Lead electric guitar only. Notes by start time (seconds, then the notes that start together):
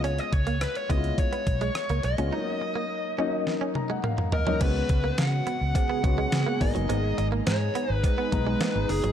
0.05 C#5
0.19 D#5
0.33 C#5
0.62 B4
0.77 C#5
0.91 D#5
1.19 C#5
2.05 D#5
4.33 A#4
4.62 B4
5.19 F#5
5.76 F#5
6.61 D#5
7.18 D#5
7.47 C#5
7.93 B4
8.04 B4
8.90 G#4